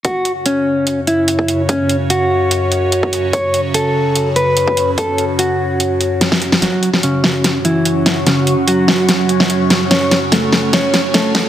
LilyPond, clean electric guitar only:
\new Staff \with { instrumentName = "Clean electric guitar" } { \time 4/4 \key fis \minor \tempo 4 = 146 fis'8 r8 cis'4. e'4. | cis'8 r8 fis'2. | cis''8 r8 a'4. b'4. | a'8 r8 fis'2. |
<fis fis'>8 r8 <cis cis'>4. <e e'>4. | <cis cis'>8 r8 <fis fis'>2. | <cis' cis''>8 r8 <a a'>4 <cis' cis''>8 r8 <a a'>4 | }